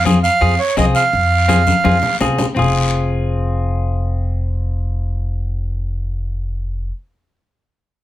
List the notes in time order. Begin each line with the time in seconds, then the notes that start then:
Already playing: F2
0.05 C4 F4 G#4, high conga, short guiro
0.23 F5, short guiro
0.41 F2 C4 F4 G#4, long guiro
0.59 C#5
0.77 C2 C4 F4 G#4 D#5, high conga, short guiro
0.95 F5, short guiro
1.13 F2, high conga, long guiro
1.48 C4 F4 G#4, high conga, short guiro
1.67 high conga, short guiro
1.84 F2 C4 F4 G#4, high conga, long guiro
2.03 low conga
2.21 C2 C4 F4 G#4, low conga, short guiro
2.38 low conga, short guiro
2.55 F1 C4 F4, low conga, long guiro
2.59 G#4